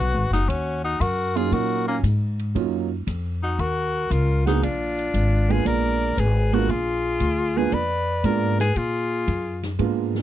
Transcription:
Already playing: B1 F#4 B4
0.14 G#1
0.31 F#1 D#4 F#4, snare, ride
0.48 D#2 C#4 F#4, kick, ride
0.84 D#4 F#4
1.00 F#2 F#4 A#4, kick, hi-hat pedal, ride
1.36 F#3 A#3 C#4 D#4 F4 G#4, ride
1.52 A#2 F#4 A#4, kick, ride
1.88 A#3 C#4
2.03 G#2, kick, hi-hat pedal, ride
2.39 ride
2.55 F#2 F#3 A#3 C#4 D#4 F4, kick, ride
3.07 F2, kick, hi-hat pedal, ride
3.43 D#4 F#4
3.59 D#2 F#4 A#4, kick, ride
4.10 C#2 F4 A#4, kick, hi-hat pedal, ride
4.46 G#3 A#3 B3 D4 D#4 F#4 G#4, snare, ride
4.62 A#1 D4 F4, kick, ride
4.99 ride
5.14 G#1, kick, hi-hat pedal, ride
5.50 G#3 A#3 B3 D4 F4 G#4 B4, ride
5.65 A#1 A#4 D5, kick, ride
6.17 G#1 G#4 B4, kick, hi-hat pedal, ride
6.52 G#3 A#3 B3 D4 F4 F#4 A#4, ride
6.69 A#1 F4 G#4, kick, ride
7.20 D2, kick, hi-hat pedal, ride
7.57 G#3 A#3 B3 D4 F4 G#4 B4
7.72 F2 B4 D5, kick, ride
8.24 G#2 G#3 A#3 B3 D4 F4 A#4 D5, kick, hi-hat pedal, ride
8.59 G#4 B4, snare, ride
8.75 A#2 F4 G#4, kick, ride
9.27 F#2, kick, hi-hat pedal, ride
9.63 snare, ride
9.79 G#2 G#3 A#3 B3 D4 F4, kick, ride
10.15 snare

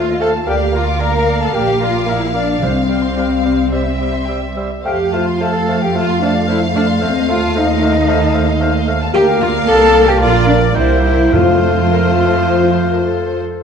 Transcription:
Already playing: D#2 A3 F4 F5
0.10 D#5
0.20 A3 A4 C5 F5 A5
0.36 A5
0.46 D2 A#3 G4 D5 F5 G5
0.62 F5
0.73 A#3 F4 D5 F5 A#5
0.87 D6
0.98 A#3 A#4 D5 F5 A#5
1.15 F5
1.26 A#3 D5 F5
1.39 A4 F5 A5
1.52 A#1 A#3 G4 D5 F5 G5
1.56 D5
1.69 F5
1.79 A#3 F4 D5 F5 A#5
1.97 D6
2.06 A#3 E4 D5 E5 F5 A#5
2.22 F5
2.34 A#3 D4 D5 F5
2.50 F5
2.61 C2 C3 G3 C4 C5 F5
2.77 F5
2.89 G3 C5 F5 G5
3.04 C6
3.16 G3 C5 F5 G5
3.30 F5
3.44 G3 C5 F5
3.57 F5
3.71 G3 C5 E5
3.85 E5
3.99 G3 C5 E5 G5
4.14 C6
4.26 G3 C5 E5 G5
4.42 E5
4.56 G3 C5 E5
4.70 E5
4.84 F2 A3 G4 C5 F5 G5
4.98 F5
5.12 A3 F4 C5 F5 A5
5.27 C6
5.40 A3 A4 C5 F5 A5
5.55 F5
5.68 A3 C5 F5
5.81 G4 F5 G5
5.94 A3 F4 C5 F5 A5
6.10 C6
6.21 A3 D4 C5 D5 F5 A5
6.35 F5
6.47 A3 E4 C5 E5 F5
6.62 F5
6.74 A3 D4 C5 D5 F5 A5
6.88 C6
7.01 D#2 A3 C4 C5 F5
7.14 D#5
7.27 A3 F4 C5 F5
7.42 A5
7.54 A3 D#4 C5 D#5 F5
7.69 D#5
7.81 A3 C5 F5
7.95 D#5
8.07 A3 C5 F5
8.22 A5
8.34 A3 C5 F5
8.48 D#5
8.60 A3 C5 F5
8.75 D#5
8.87 A3 C5 F5
9.01 A5
9.13 D2 A#3 G4 A#4 D5 F5 G5
9.41 F4 F5
9.66 C2 A4 A5
10.08 G4 G5
10.19 A#1 A#3 F4 A#4 D5 F5
10.23 F4
10.47 D4 D5
10.74 C2 G3 A#3 E4 A#4 C5 E5 G5
11.03 E4 E5
11.32 F2 F3 A3 F4 A4 C5 F5
11.92 A#4
12.19 A4
12.49 C5
12.92 A#4
13.07 A4

